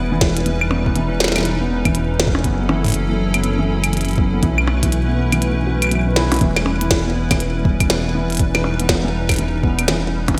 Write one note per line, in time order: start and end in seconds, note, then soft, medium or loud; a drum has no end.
0.00 2.43 E1 loud
0.00 0.12 E3 loud
0.00 2.40 G3 medium
0.00 0.71 B3 medium
0.00 6.37 C#4 medium
0.00 0.44 E4 medium
0.00 2.40 B4 loud
0.12 0.20 E3 loud
0.21 kick loud
0.21 snare loud
0.37 closed hi-hat medium
0.46 0.61 E3 medium
0.46 2.42 D#4 medium
0.46 closed hi-hat soft
0.61 claves medium
0.71 0.84 B3 medium
0.71 percussion blips medium
0.86 0.94 B3 medium
0.86 kick medium
0.96 1.09 E3 loud
0.96 closed hi-hat medium
1.20 snare loud
1.24 snare medium
1.28 snare medium
1.32 snare medium
1.36 1.45 E3 medium
1.36 snare medium
1.36 closed hi-hat medium
1.36 claves medium
1.38 snare soft
1.40 snare soft
1.43 snare soft
1.43 closed hi-hat medium
1.61 1.68 B3 medium
1.70 1.83 B3 medium
1.85 1.94 E3 loud
1.85 kick medium
1.85 closed hi-hat medium
1.85 claves medium
1.95 closed hi-hat medium
2.20 2.34 E3 medium
2.20 snare loud
2.27 kick loud
2.35 percussion blips loud
2.44 4.41 F#1 loud
2.44 4.41 F#3 medium
2.44 2.58 B3 medium
2.44 6.37 E4 medium
2.44 4.41 A4 medium
2.44 kick medium
2.44 closed hi-hat medium
2.60 2.68 B3 medium
2.69 2.82 E3 loud
2.69 percussion blips loud
2.85 kick medium
2.85 closed hi-hat soft
2.86 kick medium
2.86 closed hi-hat soft
2.88 kick medium
2.88 closed hi-hat soft
2.90 kick soft
2.90 closed hi-hat soft
2.92 kick soft
2.92 closed hi-hat medium
2.94 closed hi-hat medium
3.09 3.18 E3 medium
3.34 3.42 B3 medium
3.34 closed hi-hat medium
3.34 claves medium
3.44 3.57 B3 medium
3.44 closed hi-hat medium
3.59 3.67 E3 loud
3.84 closed hi-hat medium
3.84 claves medium
3.93 4.08 E3 medium
3.93 closed hi-hat soft
3.97 closed hi-hat soft
4.01 closed hi-hat soft
4.05 closed hi-hat soft
4.09 closed hi-hat soft
4.11 closed hi-hat soft
4.13 closed hi-hat soft
4.16 4.31 B3 medium
4.16 kick loud
4.16 closed hi-hat soft
4.33 4.41 B3 medium
4.43 6.39 B1 loud
4.43 4.56 E3 loud
4.43 6.39 A3 medium
4.43 6.39 B4 medium
4.43 kick medium
4.43 closed hi-hat medium
4.58 claves medium
4.68 percussion blips medium
4.83 4.92 E3 medium
4.83 kick medium
4.83 closed hi-hat medium
4.92 closed hi-hat medium
5.08 5.16 B3 medium
5.17 5.30 B3 medium
5.32 5.41 E3 loud
5.32 closed hi-hat medium
5.32 claves medium
5.42 closed hi-hat medium
5.67 5.80 F#3 medium
5.82 closed hi-hat medium
5.82 claves medium
5.84 claves soft
5.87 claves soft
5.89 closed hi-hat medium
5.89 claves soft
5.91 6.05 E3 medium
5.91 claves soft
5.95 claves soft
5.99 claves soft
6.03 6.16 D#3 medium
6.03 claves soft
6.16 6.30 E4 loud
6.16 snare loud
6.32 6.41 F#3 medium
6.32 closed hi-hat medium
6.32 percussion blips loud
6.34 closed hi-hat medium
6.36 closed hi-hat soft
6.39 10.36 E1 medium
6.39 8.37 E4 medium
6.39 10.34 B4 medium
6.39 closed hi-hat soft
6.41 6.54 E3 loud
6.41 10.34 G3 medium
6.41 10.40 C#4 medium
6.41 kick loud
6.41 closed hi-hat medium
6.56 snare medium
6.56 claves medium
6.66 percussion blips medium
6.81 6.90 E3 medium
6.81 closed hi-hat medium
6.91 kick loud
6.91 snare loud
6.91 closed hi-hat medium
7.06 7.14 B3 medium
7.15 7.29 B3 medium
7.31 7.39 E3 loud
7.31 kick loud
7.31 snare medium
7.31 closed hi-hat medium
7.31 claves medium
7.40 closed hi-hat medium
7.65 7.80 E3 medium
7.65 kick loud
7.80 kick loud
7.80 closed hi-hat medium
7.80 claves medium
7.90 8.03 B3 medium
7.90 snare loud
7.90 closed hi-hat medium
8.05 8.13 B3 medium
8.15 8.28 E3 loud
8.30 closed hi-hat soft
8.32 closed hi-hat soft
8.35 closed hi-hat soft
8.37 closed hi-hat medium
8.39 10.36 D#4 medium
8.39 kick loud
8.39 closed hi-hat medium
8.55 8.64 E3 medium
8.55 snare medium
8.55 claves medium
8.64 percussion blips medium
8.80 8.88 B3 medium
8.80 closed hi-hat medium
8.89 9.02 B3 medium
8.89 kick loud
8.89 snare loud
8.89 closed hi-hat medium
9.04 9.13 E3 loud
9.29 kick loud
9.29 snare medium
9.29 closed hi-hat medium
9.29 claves medium
9.32 closed hi-hat medium
9.34 closed hi-hat soft
9.36 closed hi-hat soft
9.39 9.53 E3 medium
9.39 closed hi-hat medium
9.63 9.77 B3 medium
9.63 kick loud
9.79 9.87 B3 medium
9.79 closed hi-hat medium
9.79 claves medium
9.88 10.02 E3 loud
9.88 snare loud
9.88 closed hi-hat medium
10.28 10.37 E3 medium
10.28 kick medium
10.28 closed hi-hat medium
10.28 percussion blips medium
10.35 percussion blips medium